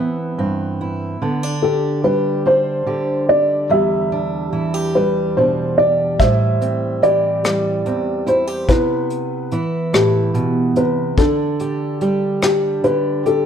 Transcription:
Already playing: steel-string acoustic guitar E3 B3 C4 E4
0.38 steel-string acoustic guitar G2 C4
0.81 steel-string acoustic guitar E4
1.22 steel-string acoustic guitar D3 B3
1.43 steel-string acoustic guitar D4
1.62 steel-string acoustic guitar G4, felt piano A4
2.03 steel-string acoustic guitar G3 G4, felt piano B4
2.45 steel-string acoustic guitar D4, felt piano C5
2.86 steel-string acoustic guitar D3 G4
3.29 steel-string acoustic guitar G4, felt piano D5
3.69 steel-string acoustic guitar E2 G3, felt piano G4 E5
4.12 steel-string acoustic guitar D4
4.53 steel-string acoustic guitar E3 E4
4.74 steel-string acoustic guitar G4
4.95 steel-string acoustic guitar G3, felt piano B4
5.37 steel-string acoustic guitar B2 D4, felt piano C5
5.78 steel-string acoustic guitar G4, felt piano D5
6.19 steel-string acoustic guitar A2 G3, felt piano C5 E5, kick, closed hi-hat
6.61 steel-string acoustic guitar C4, closed hi-hat
7.02 steel-string acoustic guitar E3 G4, felt piano G4 D5, closed hi-hat
7.44 steel-string acoustic guitar G3, cross-stick, closed hi-hat
7.86 steel-string acoustic guitar E2 C4, closed hi-hat
8.26 steel-string acoustic guitar E4, felt piano C5, closed hi-hat
8.47 steel-string acoustic guitar G4
8.68 steel-string acoustic guitar C3 B3, felt piano E4 B4, kick, closed hi-hat
9.10 closed hi-hat
9.51 steel-string acoustic guitar E3 E4, closed hi-hat
9.93 steel-string acoustic guitar A2, felt piano G4, cross-stick, closed hi-hat
10.34 steel-string acoustic guitar B2, closed hi-hat
10.76 steel-string acoustic guitar C3, felt piano B4, closed hi-hat
11.18 steel-string acoustic guitar D3 D4, felt piano D4 A4, kick, closed hi-hat
11.60 steel-string acoustic guitar G4, closed hi-hat
12.01 steel-string acoustic guitar G3 G4, closed hi-hat
12.42 steel-string acoustic guitar D4, felt piano G4, cross-stick, closed hi-hat
12.84 steel-string acoustic guitar D3 G4, felt piano B4, closed hi-hat
13.26 steel-string acoustic guitar G4, felt piano A4, closed hi-hat

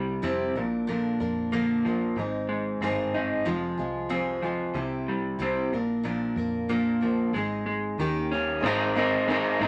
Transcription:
Already playing: fingered electric bass C2, clean electric guitar C3 G3, steel-string acoustic guitar G3 C4 E4 G4
0.22 fingered electric bass F2, steel-string acoustic guitar C3 G3 C4 E4 G4
0.55 fingered electric bass A#1, clean electric guitar A#2, steel-string acoustic guitar F3 A#3 D4 A#4
0.87 steel-string acoustic guitar A#2 D3 F3 A#3 D4 A#4
1.20 fingered electric bass F2, steel-string acoustic guitar F3 A#3 D4 A#4
1.52 steel-string acoustic guitar A#2 D3 F3 A#3 D4 A#4
1.86 steel-string acoustic guitar F3 A#3 D4 A#4
2.16 fingered electric bass G#1, clean electric guitar G#2, steel-string acoustic guitar G#3 C4 D#4 G#4
2.49 clean electric guitar G#3
2.81 fingered electric bass G1, steel-string acoustic guitar D#3 G#3 C4 D#4 G#4
3.14 steel-string acoustic guitar G#3 C4 D#4 G#4
3.45 fingered electric bass F1, steel-string acoustic guitar F2 C3 F3 G#3 F4 G#4
3.78 fingered electric bass C2, steel-string acoustic guitar F3 G#3 F4 G#4
4.09 steel-string acoustic guitar F2 C3 F3 G#3 F4 G#4, clean electric guitar C4
4.42 steel-string acoustic guitar F3 G#3 F4 G#4
4.74 fingered electric bass C2, clean electric guitar C3, steel-string acoustic guitar G3 C4 E4 G4
5.08 clean electric guitar G3
5.39 fingered electric bass C2, steel-string acoustic guitar C3 G3 C4 E4 G4
5.72 fingered electric bass A#1, clean electric guitar A#2, steel-string acoustic guitar A#3 D4 A#4
6.03 steel-string acoustic guitar A#2 F3 A#3 D4 A#4
6.36 fingered electric bass F2, steel-string acoustic guitar A#3 D4 A#4
6.69 steel-string acoustic guitar A#2 F3 A#3 D4 A#4
7.01 clean electric guitar F3, steel-string acoustic guitar A#3 D4 A#4
7.33 fingered electric bass G#1, steel-string acoustic guitar G#3 C4 D#4 G#4
7.66 clean electric guitar G#3
7.98 fingered electric bass D#2, steel-string acoustic guitar D#3 A#3 C#4 G4
8.32 steel-string acoustic guitar A#3 C#4 G4
8.60 fingered electric bass G#1, string section C4 D#4 G#4 A#4, grand piano G#4 A#4 C5 D#5
8.64 steel-string acoustic guitar G#3 C4 D#4 A#4
8.96 clean electric guitar G#3, steel-string acoustic guitar C4 D#4 A#4
9.25 grand piano G#4 A#4 C5 D#5
9.30 steel-string acoustic guitar G#3 C4 D#4 A#4
9.59 fingered electric bass G#1, clean electric guitar G#3, steel-string acoustic guitar D#4 A#4
9.63 steel-string acoustic guitar C4

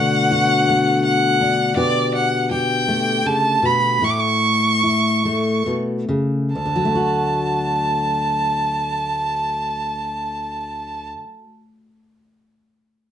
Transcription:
Already playing: steel-string acoustic guitar B2 D3 A3 D4 F#4, fiddle F#5
0.31 steel-string acoustic guitar F#4
0.69 steel-string acoustic guitar A3
1.05 fiddle F#5
1.41 steel-string acoustic guitar D4
1.76 steel-string acoustic guitar B2 G4, fiddle D5
2.15 fiddle F#5
2.51 steel-string acoustic guitar G4, fiddle G5
2.88 steel-string acoustic guitar A3
3.26 steel-string acoustic guitar C#3, fiddle A5
3.62 steel-string acoustic guitar B2, fiddle B5
4.02 steel-string acoustic guitar A2 E4, fiddle C#6
4.10 fiddle D6
4.20 fiddle C#6
4.83 steel-string acoustic guitar E4
5.25 steel-string acoustic guitar A3
5.66 steel-string acoustic guitar B2
6.09 steel-string acoustic guitar C#3
6.54 steel-string acoustic guitar D2, fiddle A5
6.66 steel-string acoustic guitar D3
6.76 steel-string acoustic guitar F#3
6.85 steel-string acoustic guitar A3
6.95 steel-string acoustic guitar F#4

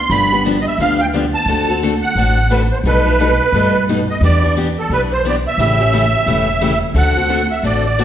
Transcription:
Already playing: accordion C6
0.10 upright bass G1, steel-string acoustic guitar D3 F3 B3 D4 G4, accordion B5
0.32 steel-string acoustic guitar B3 D4 G4
0.45 steel-string acoustic guitar D3 F3 B3 D4 G4
0.61 accordion D#5
0.67 accordion E5
0.78 upright bass D2, steel-string acoustic guitar D3 F3 B3 D4 G4, accordion F5
1.01 accordion G5
1.13 steel-string acoustic guitar D3 F3 B3 D4 G4
1.34 accordion A5
1.46 upright bass D2, steel-string acoustic guitar D3 A3 C4 F#4
1.50 steel-string acoustic guitar A4
1.68 steel-string acoustic guitar C4 F#4 A4
1.83 steel-string acoustic guitar D3 A3 C4 F#4 A4
2.03 accordion F#5
2.15 upright bass A1, steel-string acoustic guitar D3 A3 C4 F#4 A4
2.50 steel-string acoustic guitar D3 A3 C4 F#4 A4, accordion B4
2.72 accordion C5
2.83 upright bass B1, steel-string acoustic guitar B2 G3 A3 D#4 A4, accordion B4
3.06 steel-string acoustic guitar A3 D#4 A4
3.20 steel-string acoustic guitar B2 G3 A3 D#4 A4
3.52 upright bass G2, steel-string acoustic guitar B2 G3 A3 D#4 A4
3.89 steel-string acoustic guitar B2 G3 A3 D#4 A4
4.10 accordion D#5
4.21 upright bass E2, steel-string acoustic guitar E3 B3 D4 G4, accordion D5
4.43 steel-string acoustic guitar B3 D4 G4
4.57 steel-string acoustic guitar E3 B3 D4 G4
4.79 accordion A4
4.89 upright bass B1, steel-string acoustic guitar E3 B3 D4 G4, accordion B4
5.12 accordion C5
5.25 steel-string acoustic guitar E3 B3 D4 G4, accordion D5
5.47 accordion E5
5.58 upright bass A1, steel-string acoustic guitar C#3 E3 A3 C#4 G4
5.80 steel-string acoustic guitar A3 C#4 G4
5.93 steel-string acoustic guitar C#3 E3 A3 C#4 G4
6.26 upright bass E1, steel-string acoustic guitar C#3 E3 A3 C#4 G4
6.61 steel-string acoustic guitar C#3 E3 A3 C#4 G4
6.94 upright bass D2, steel-string acoustic guitar D3 A3 C4 F#4 A4, accordion F#5
7.15 steel-string acoustic guitar C4 F#4 A4
7.29 steel-string acoustic guitar D3 A3 C4 F#4 A4
7.51 accordion E5
7.63 upright bass A1, steel-string acoustic guitar D3 A3 C4 F#4 A4, accordion D5
7.86 accordion D5
7.99 steel-string acoustic guitar D3 A3 C4 F#4 A4

